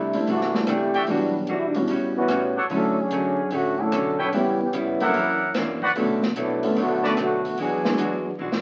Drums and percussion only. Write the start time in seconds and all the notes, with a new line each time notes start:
0.13 open hi-hat
0.27 open hi-hat
0.41 snare
0.55 snare
0.67 cross-stick, closed hi-hat
0.94 open hi-hat
1.07 open hi-hat
1.47 closed hi-hat
1.75 open hi-hat
1.88 open hi-hat
2.28 cross-stick, closed hi-hat
2.70 open hi-hat
3.11 closed hi-hat
3.51 open hi-hat
3.92 cross-stick, closed hi-hat
4.33 open hi-hat
4.73 closed hi-hat
5.00 open hi-hat
5.14 open hi-hat
5.54 cross-stick, snare, closed hi-hat
5.82 kick
5.96 open hi-hat
6.23 snare
6.36 closed hi-hat
6.63 open hi-hat
6.76 open hi-hat
7.04 snare
7.17 cross-stick, closed hi-hat
7.45 open hi-hat
7.57 open hi-hat
7.85 snare
7.98 closed hi-hat
8.52 snare